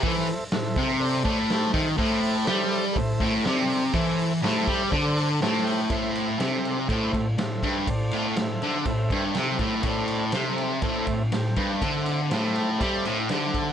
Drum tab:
RD |----------------|----------------|----------------|x-x-x-x-x-x-x-x-|
HH |o-o-o-o-o-o-o-o-|o-o-o-o-o-o-o-o-|o-o-o-o-o-o-o-o-|----------------|
SD |-o--o-------o---|----o-------o---|----o-------o---|----o-------o---|
BD |o-----o---o---o-|o-------o-o-----|o-----o-o-------|o-------o-o---o-|

RD |x-x-x-x-x-x-x-x-|x-x-x-x-x-x-x-x-|x-x-x-x-x-x-x-x-|
HH |----------------|----------------|----------------|
SD |----o-------o---|----o-------o---|----oo------o---|
BD |o-------o-o---o-|o-------o-o---o-|o-------o-----o-|